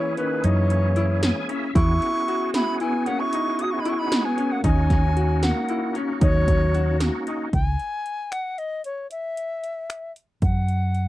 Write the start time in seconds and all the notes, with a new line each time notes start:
Already playing: E3 A#3 C#4 E4 G#4 C#5
0.17 D#3 C#4 B4, closed hi-hat
0.44 F#2 E3 D#4 C#5, closed hi-hat
0.70 closed hi-hat
0.96 E4, closed hi-hat
1.23 G#5, snare, closed hi-hat
1.49 C#4 E5, closed hi-hat
1.75 E2 B3 C#4 E4 F#4 G#4 C#6, kick, closed hi-hat
2.02 closed hi-hat
2.28 F#4, closed hi-hat
2.54 E4 B5, snare, closed hi-hat
2.80 B3 E4 G#5, closed hi-hat
3.06 A#3 C#4 F#5, closed hi-hat
3.20 E4 C#6
3.33 D#4, closed hi-hat
3.59 D#6, closed hi-hat
3.63 F#4
3.71 E4 C#6
3.80 D#4 B5
3.85 E4 C#6, closed hi-hat
3.91 E4
3.99 D#4 B5
4.12 snare, closed hi-hat
4.25 B3 G#5
4.38 C#4, closed hi-hat
4.52 A#3 F#5
4.64 D#2 A#3 C#4 D#4 F#4 G#5, kick, closed hi-hat
4.90 kick, snare, closed hi-hat
5.16 F#4, closed hi-hat
5.43 A#3 F#5, snare, closed hi-hat
5.69 E4, closed hi-hat
5.95 C#4, closed hi-hat
6.21 D#2 F#3 D#4 C#5, kick, closed hi-hat
6.48 kick, closed hi-hat
6.75 F#4, closed hi-hat
7.00 snare, closed hi-hat
7.27 D#4, closed hi-hat
7.53 C#2 G#5, kick, closed hi-hat
7.79 closed hi-hat
8.06 closed hi-hat
8.32 F#5, finger snap, closed hi-hat
8.58 D#5, closed hi-hat
8.84 C#5, closed hi-hat
9.11 E5, closed hi-hat
9.37 closed hi-hat
9.64 closed hi-hat
9.90 finger snap, closed hi-hat
10.16 closed hi-hat
10.42 F#2 F#5, kick, closed hi-hat
10.69 closed hi-hat
10.95 closed hi-hat